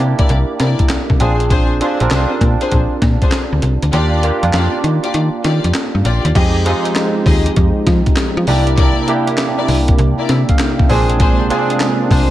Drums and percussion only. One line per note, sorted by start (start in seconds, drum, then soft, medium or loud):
0.19 kick loud
0.19 closed hi-hat medium
0.29 closed hi-hat medium
0.60 snare medium
0.60 closed hi-hat medium
0.79 kick medium
0.79 closed hi-hat medium
0.89 snare loud
0.89 clap medium
0.89 closed hi-hat medium
1.10 kick loud
1.20 closed hi-hat medium
1.40 closed hi-hat soft
1.50 kick loud
1.50 closed hi-hat medium
1.81 closed hi-hat medium
2.00 closed hi-hat medium
2.11 snare loud
2.11 clap medium
2.11 closed hi-hat medium
2.41 kick medium
2.41 closed hi-hat medium
2.61 closed hi-hat medium
2.72 kick medium
2.72 closed hi-hat medium
3.02 kick medium
3.02 snare medium
3.02 closed hi-hat medium
3.22 kick medium
3.22 closed hi-hat soft
3.32 snare loud
3.32 clap medium
3.32 closed hi-hat medium
3.62 closed hi-hat medium
3.82 closed hi-hat medium
3.93 closed hi-hat medium
4.23 closed hi-hat medium
4.43 closed hi-hat soft
4.53 snare loud
4.53 clap medium
4.53 closed hi-hat medium
4.84 closed hi-hat medium
5.04 closed hi-hat medium
5.14 closed hi-hat medium
5.44 snare medium
5.44 closed hi-hat medium
5.64 closed hi-hat soft
5.74 snare loud
5.74 clap medium
5.74 closed hi-hat medium
6.05 closed hi-hat medium
6.25 closed hi-hat medium
6.35 kick loud
6.35 closed hi-hat medium
6.35 crash medium
6.66 closed hi-hat medium
6.85 closed hi-hat medium
6.96 snare loud
6.96 clap medium
6.96 closed hi-hat medium
7.26 kick medium
7.26 open hi-hat medium
7.46 closed hi-hat medium
7.56 kick medium
7.56 closed hi-hat medium
7.87 kick medium
7.87 snare medium
7.87 closed hi-hat medium
8.06 kick medium
8.06 closed hi-hat soft
8.16 snare loud
8.16 clap medium
8.16 closed hi-hat medium
8.47 open hi-hat medium
8.67 closed hi-hat medium
8.78 kick loud
8.78 closed hi-hat medium
9.08 closed hi-hat medium
9.27 closed hi-hat medium
9.38 snare loud
9.38 clap medium
9.38 closed hi-hat medium
9.68 open hi-hat medium
9.88 kick loud
9.88 closed hi-hat medium
9.99 closed hi-hat medium
10.29 snare medium
10.29 closed hi-hat medium
10.49 kick medium
10.49 closed hi-hat medium
10.59 snare loud
10.59 clap medium
10.59 closed hi-hat medium
10.79 kick loud
10.90 open hi-hat medium
11.10 closed hi-hat medium
11.20 kick loud
11.20 closed hi-hat medium
11.50 closed hi-hat medium
11.70 closed hi-hat medium
11.80 snare loud
11.80 clap medium
11.80 closed hi-hat medium
12.11 kick medium
12.11 open hi-hat medium